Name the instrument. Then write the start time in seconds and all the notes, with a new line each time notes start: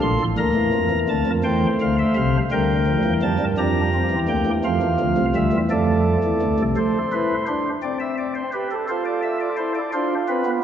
pipe organ
Already playing: A4
0.02 A#1 A#2 C6
0.20 A1 A2
0.38 D2 D3 A#3 A#4 A#5
0.55 E2 E3
0.73 F2 F3
0.90 E2 E3
1.09 D2 D3 A5
1.27 F2 F3
1.44 E2 E3 A3 C5 G5
1.81 D2 D3 F5
1.99 E5
2.16 C2 C3 F5
2.51 D2 D3 G3 A#4 G5
2.87 F3
3.04 E2 E3
3.22 F2 F3 G3 A5
3.40 G2 G3
3.58 F2 F3 D4 G4 A#5
3.94 C4
4.11 E2 E3
4.28 D2 D3 A#3 G5
4.46 E2 E3
4.64 F2 F3 A3 F4 F5
4.83 E2 E3
5.00 D2 D3 F3
5.17 C2 C3
5.35 D2 D3 G3 E5
5.52 E2 E3
5.71 F2 F3 A3 A4 D5
6.24 E2 E3
6.42 D2 D3
6.60 C2 C3
6.76 A3 A4 C5
7.12 E4 B4
7.47 D4 C5
7.83 C4 D5
8.00 E5
8.18 D5
8.35 C5
8.53 G4 B4
8.71 A4
8.89 F4 A4 C5
9.05 D5
9.23 E5
9.40 D5
9.57 E4 C5
9.75 D5
9.93 D4 F4 C5
10.28 C4 B4
10.45 B3